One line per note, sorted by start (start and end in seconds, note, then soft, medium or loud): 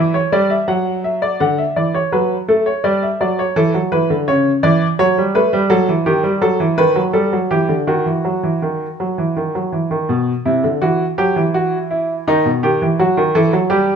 0.00 0.19 E3 medium
0.00 0.14 E5 medium
0.14 0.32 C#5 medium
0.32 0.55 G3 medium
0.32 0.50 D5 medium
0.50 0.68 E5 medium
0.68 1.39 F#3 medium
0.68 0.91 F#5 medium
1.04 1.22 E5 medium
1.22 1.40 D5 medium
1.40 1.63 D3 medium
1.40 1.58 F#5 medium
1.58 1.76 E5 soft
1.76 1.99 E3 soft
1.76 1.94 D5 medium
1.95 2.12 C#5 medium
2.12 2.35 F#3 medium
2.12 2.35 B4 medium
2.48 2.71 A3 medium
2.48 2.66 A4 medium
2.66 2.84 C#5 medium
2.84 3.07 G3 medium
2.84 3.02 D5 medium
3.03 3.20 E5 soft
3.21 3.43 F#3 medium
3.21 3.38 D5 medium
3.39 3.57 C#5 medium
3.56 3.74 E3 medium
3.56 3.79 A4 medium
3.74 3.92 F#3 soft
3.92 4.10 E3 medium
3.92 4.14 B4 medium
4.10 4.28 D3 medium
4.28 4.50 C#3 medium
4.28 4.50 C#5 medium
4.63 4.85 E3 medium
4.63 4.85 D5 medium
4.99 5.17 F#3 medium
4.99 5.21 C#5 medium
5.18 5.35 G3 medium
5.35 5.53 A3 medium
5.35 5.57 B4 medium
5.53 5.70 G3 medium
5.70 5.88 F#3 medium
5.70 5.92 A4 medium
5.89 6.06 E3 medium
6.06 6.24 D#3 medium
6.06 6.28 G4 medium
6.23 6.41 G3 medium
6.41 6.59 F#3 medium
6.41 6.64 A4 medium
6.60 6.78 E3 medium
6.78 6.96 D#3 medium
6.78 7.00 B4 medium
6.96 7.14 F#3 medium
7.13 7.32 G3 medium
7.13 7.36 A4 medium
7.33 7.50 F#3 medium
7.51 7.69 E3 medium
7.51 7.74 G4 medium
7.69 7.87 D3 medium
7.87 8.05 D#3 medium
7.87 9.68 F#4 medium
8.06 8.24 E3 soft
8.25 8.43 F#3 soft
8.43 8.61 E3 soft
8.62 8.85 D#3 soft
9.00 9.17 F#3 medium
9.18 9.36 E3 soft
9.37 9.54 D#3 soft
9.55 9.72 F#3 soft
9.72 9.90 E3 soft
9.91 10.09 D#3 soft
10.09 10.32 B2 medium
10.45 10.63 C3 medium
10.45 10.68 E4 medium
10.64 10.81 D3 soft
10.82 11.04 E3 medium
10.82 11.04 F#4 medium
11.18 11.36 F#3 medium
11.18 11.41 G4 medium
11.36 12.24 E3 medium
11.54 11.77 F#4 medium
11.91 12.13 E4 medium
12.28 12.44 D#3 medium
12.28 12.49 D#4 medium
12.45 12.62 B2 soft
12.63 12.80 D#3 medium
12.63 12.85 G4 medium
12.82 12.98 E3 medium
12.99 13.16 F#3 medium
12.99 13.21 F#4 medium
13.17 13.34 D#3 medium
13.35 13.52 E3 medium
13.35 13.57 A4 medium
13.53 13.70 F#3 medium
13.70 13.92 G3 medium
13.70 13.96 G4 medium